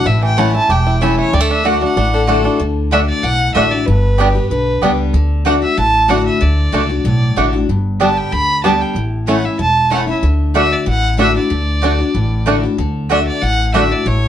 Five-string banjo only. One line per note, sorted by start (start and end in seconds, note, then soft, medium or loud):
0.00 0.19 A3 medium
0.06 0.51 E4 medium
0.23 0.67 E3 medium
0.38 0.83 C#4 medium
0.55 0.85 E4 medium
0.70 1.15 G4 medium
0.87 1.30 E4 medium
1.01 1.33 C#4 medium
1.19 1.33 A3 medium
1.33 1.40 G3 medium
1.40 1.64 A3 medium
1.51 1.81 D4 medium
1.65 2.10 A3 medium
1.82 1.96 D4 medium
1.97 2.42 D4 medium
2.14 2.57 D3 medium
2.29 2.60 A3 medium
2.45 2.60 D4 medium
2.93 3.00 A3 medium
2.93 3.00 D4 medium
3.56 3.63 A3 medium
3.56 3.63 D4 medium
4.20 4.27 G3 medium
4.20 4.27 B3 medium
4.20 4.27 D4 medium
4.83 4.90 G3 medium
4.83 4.90 B3 medium
4.83 4.90 D4 medium
5.46 5.53 A3 medium
5.46 5.54 D4 medium
6.10 6.17 A3 medium
6.10 6.17 D4 medium
6.74 6.81 A3 medium
6.74 6.81 D4 medium
7.37 7.44 A3 medium
7.37 7.45 D4 medium
8.01 8.08 G3 medium
8.01 8.08 B3 medium
8.01 8.08 D4 medium
8.64 8.71 G3 medium
8.64 8.72 B3 medium
8.64 8.72 D4 medium
9.28 9.35 A3 medium
9.28 9.35 C#4 medium
9.28 9.36 E4 medium
9.91 9.99 A3 medium
9.91 9.99 C#4 medium
9.91 9.99 E4 medium
10.55 10.63 A3 medium
10.55 10.63 D4 medium
11.19 11.26 A3 medium
11.19 11.27 D4 medium
11.84 11.91 A3 medium
11.84 11.91 D4 medium
12.47 12.54 A3 medium
12.47 12.55 D4 medium
13.11 13.18 A3 medium
13.11 13.19 D4 medium
13.74 13.82 A3 medium
13.74 13.82 D4 medium